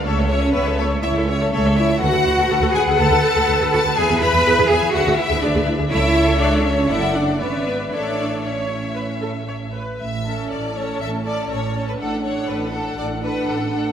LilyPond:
<<
  \new Staff \with { instrumentName = "Violin section" } { \time 4/4 \key a \major \tempo 4 = 122 cis''16 e''16 cis''16 e''16 cis''16 e''16 cis''16 e''16 cis''16 e''16 cis''16 e''16 cis''16 e''16 cis''16 e''16 | fis''1 | e''1 | e''2 fis''4 e''4 |
e''4 e''2~ e''8 r8 | r8 a''4 a''4 a''4 a''8 | fis''8 fis''4 fis''4 fis''4 fis''8 | }
  \new Staff \with { instrumentName = "Violin section" } { \time 4/4 \key a \major a'8 cis''8 b'8 a'8 e''8 cis''8 a'8 e''8 | fis''4. gis''8 a''4. a''8 | gis''8 b''4 gis''8 fis''8 e''8 d''8 r8 | e''4 d''8 cis''8 e''8 d''8 cis''8 b'8 |
d''4 cis''2~ cis''8 r8 | e''4 d''8 cis''8 e''8 d''8 cis''8. b'16 | a'8 cis''8 b'8 a'8 d''8 b'8 a'4 | }
  \new Staff \with { instrumentName = "Viola section" } { \time 4/4 \key a \major << { e''16 cis''16 e''16 cis''16 e''16 cis''16 e''16 cis''16 e''16 cis''16 e''16 cis''16 e''16 cis''16 e''16 cis''16 | b'1~ | b'1 | cis''2 d''4 d''4 |
cis''4 cis''4 b'8 a'8 cis''8 b'8 | r8 a'4 a'4 a'4 a'8 | a'8 a'4 a'4 a'4 a'8 | } \\ { cis''16 a'16 cis''16 a'16 cis''16 a'16 cis''16 a'16 cis''16 a'16 cis''16 a'16 cis''16 a'16 cis''16 a'16 | a'16 a'16 fis'16 a'16 a'16 a'16 fis'16 a'16 a'16 a'16 r16 a'16 a'16 a'16 fis'16 a'16 | gis'16 gis'16 e'16 gis'16 gis'16 gis'16 e'16 gis'16 gis'16 gis'16 r16 gis'16 gis'16 gis'16 e'16 gis'16 | a'2 a'4 b'4 |
a'4 r2. | r8 cis'4 cis'4 cis'4 cis'8 | d'8 d'4 d'4 d'4 d'8 | } >> }
  \new Staff \with { instrumentName = "Cello section" } { \time 4/4 \key a \major a8 cis'8 b8 a8 e'8 cis'8 a8 e'8 | fis'4. gis'8 a'4. a'8 | gis'8 b'4 gis'8 fis'8 e'8 d'8 r8 | e'4 d'8 cis'8 e'8 d'8 cis'8 b8 |
d'4 cis'2~ cis'8 r8 | a,4 a,4 a,4 a,4 | a,4 a,4 a,4 a,4 | }
  \new Staff \with { instrumentName = "Double bass section" } { \clef bass \time 4/4 \key a \major cis,4 cis,4 cis,4 cis,4 | d,16 d,16 d,16 d,16 d,16 d,16 d,16 d,16 d,16 d,16 r16 d,16 d,16 d,16 d,16 d,16 | e,16 e,16 e,16 e,16 e,16 e,16 e,16 e,16 d,16 d,16 r16 d,16 d,16 d,16 d,16 d,16 | cis,2 fis,,4 gis,,4 |
a,,2.~ a,,8 r8 | a,,4 a,,4 a,,4 a,,4 | a,,4 a,,4 a,,4 a,,4 | }
>>